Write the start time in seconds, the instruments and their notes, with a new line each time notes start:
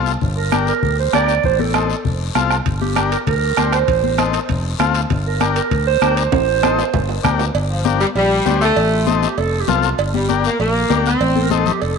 Already playing: fingered electric bass C2, transistor combo organ C4 F4 A4
0.06 short guiro
0.21 fingered electric bass G1, bombo low, long guiro
0.37 clarinet A#4
0.52 transistor combo organ D4 G4 A#4, bombo rim, high conga, short guiro
0.67 clarinet A#4, short guiro
0.82 fingered electric bass D2, bombo low, long guiro
0.99 clarinet C5
1.13 fingered electric bass D2, transistor combo organ D4 G4 A#4, clarinet D5, bombo rim, high conga, short guiro
1.28 short guiro
1.44 fingered electric bass A1, clarinet C5, bombo low, long guiro
1.59 clarinet A4, high conga
1.74 transistor combo organ C4 D#4 A4, bombo rim, high conga, short guiro
1.90 short guiro
2.05 fingered electric bass F1, bombo low, long guiro
2.35 fingered electric bass C2, transistor combo organ C4 F4 A4, bombo rim, high conga, short guiro
2.51 bombo rim, short guiro
2.66 fingered electric bass G1, bombo low, high timbale, long guiro
2.81 clarinet G4, high conga
2.95 transistor combo organ D4 G4 A#4, bombo rim, high conga, high timbale, short guiro
3.12 clarinet A#4, high timbale, short guiro
3.27 fingered electric bass D2, clarinet A#4, bombo low, high timbale, long guiro
3.57 fingered electric bass D2, transistor combo organ D4 G4 C5, bombo rim, high conga, high timbale, short guiro
3.72 clarinet C5, bombo rim, high timbale, short guiro
3.88 fingered electric bass A1, bombo low, high timbale, long guiro
4.04 high conga
4.18 transistor combo organ C4 D#4 A4, bombo rim, high conga, high timbale, short guiro
4.33 high timbale, short guiro
4.49 fingered electric bass F1, bombo low, high timbale, long guiro
4.79 fingered electric bass D2, transistor combo organ C4 F4 A4, bombo rim, high conga, high timbale, short guiro
4.94 high timbale, short guiro
5.10 fingered electric bass G1, bombo low, high timbale, long guiro
5.27 clarinet A#4
5.40 transistor combo organ D4 G4 A#4, clarinet A#4, bombo rim, high conga, high timbale, short guiro
5.56 clarinet A#4, high timbale, short guiro
5.71 fingered electric bass D2, bombo low, high timbale, long guiro
5.87 clarinet C5
6.01 fingered electric bass D2, transistor combo organ D4 G4 A#4, bombo rim, high conga, high timbale, short guiro
6.17 clarinet C5, high timbale, short guiro
6.32 fingered electric bass A1, bombo low, high timbale, long guiro
6.63 transistor combo organ D#4 A4 C5, bombo rim, high conga, high timbale, short guiro
6.79 low timbale, short guiro
6.94 fingered electric bass G1, bombo low, low timbale, long guiro
7.09 low timbale
7.23 fingered electric bass D2, transistor combo organ D4 G4 A#4, bombo low, bombo rim, high conga, short guiro
7.39 low timbale, short guiro
7.54 fingered electric bass G1, cowbell, long guiro
7.70 saxophone section F3
7.84 transistor combo organ D4 G4 A#4, high conga, short guiro
8.00 saxophone section G3, short guiro
8.15 fingered electric bass A#1, saxophone section G3, cowbell, long guiro
8.45 fingered electric bass D2, transistor combo organ D4 G4 C5, high conga, low timbale, short guiro
8.61 saxophone section A3, short guiro
8.76 fingered electric bass A1, cowbell, long guiro
8.92 clarinet F4
9.06 transistor combo organ C4 D#4 A4, high conga, short guiro
9.22 clarinet G4, short guiro
9.38 fingered electric bass F1, clarinet A4, cowbell, long guiro
9.60 clarinet G4
9.68 fingered electric bass C2, transistor combo organ C4 F4 A4, clarinet F4, high conga, low conga, low timbale, short guiro
9.83 short guiro
9.98 fingered electric bass G1, cowbell, long guiro
10.14 saxophone section G3, high conga
10.29 transistor combo organ D4 G4 A#4, high conga, short guiro
10.44 saxophone section A#3, short guiro
10.59 fingered electric bass A#1, saxophone section A#3, cowbell, long guiro
10.89 fingered electric bass D2, transistor combo organ D4 G4 A#4, high conga, low timbale, short guiro
11.06 saxophone section C4, short guiro
11.21 fingered electric bass A1, cowbell, long guiro
11.36 clarinet A4, high conga
11.43 clarinet A#4
11.50 transistor combo organ C4 D#4 A4, clarinet A4, high conga, short guiro
11.66 clarinet G4, low conga, short guiro
11.81 fingered electric bass F1, clarinet A4, cowbell, long guiro